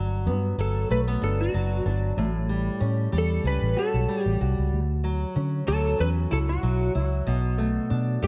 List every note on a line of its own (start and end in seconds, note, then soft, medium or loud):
0.00 0.28 G1 loud
0.00 0.58 F#3 medium
0.00 1.21 D4 medium
0.27 0.52 G2 medium
0.27 0.90 B3 medium
0.58 0.84 G1 medium
0.58 1.54 F#3 medium
0.58 0.89 A4 medium
0.90 1.16 B1 medium
0.90 1.08 A3 medium
0.90 1.00 B4 medium
1.08 2.25 B3 soft
1.22 1.48 G1 medium
1.22 1.85 D4 medium
1.22 1.39 A4 medium
1.41 1.83 F#4 medium
1.54 1.80 F#1 medium
1.54 2.49 F#3 medium
1.86 2.11 G1 medium
1.86 2.25 D4 medium
2.17 2.68 A1 loud
2.17 4.72 A2 medium
2.49 3.11 G3 medium
2.80 3.07 A2 medium
2.80 3.45 C#4 medium
3.12 3.39 E2 medium
3.12 4.07 G3 medium
3.18 3.45 A4 medium
3.44 3.58 C#2 medium
3.44 5.35 C#4 medium
3.44 3.79 B4 loud
3.62 3.74 A1 medium
3.77 4.40 F#4 medium
3.77 4.24 A4 medium
3.94 4.06 B1 medium
4.08 4.79 G3 medium
4.24 4.37 A1 medium
4.24 4.37 G4 medium
4.41 4.55 C2 medium
4.41 6.30 F#4 medium
4.58 4.70 C#2 medium
4.73 5.24 D2 medium
5.04 5.66 F#3 medium
5.36 5.62 D3 medium
5.36 5.97 C#4 medium
5.67 5.93 D2 medium
5.67 6.62 F#3 medium
5.67 6.01 A4 medium
5.99 6.25 E2 medium
5.99 7.33 C#4 medium
5.99 6.09 B4 loud
6.31 6.57 C#2 medium
6.31 6.94 E4 medium
6.31 6.38 A4 medium
6.49 6.92 F#4 medium
6.63 6.89 B1 medium
6.63 8.27 F#3 medium
6.95 7.21 C#2 medium
6.95 7.34 E4 medium
7.27 7.78 B1 medium
7.27 8.27 B2 medium
7.58 8.21 A3 medium
7.90 8.16 B2 medium
7.90 8.27 D4 medium
8.22 8.27 F#2 medium
8.22 8.27 A3 medium
8.22 8.27 A4 medium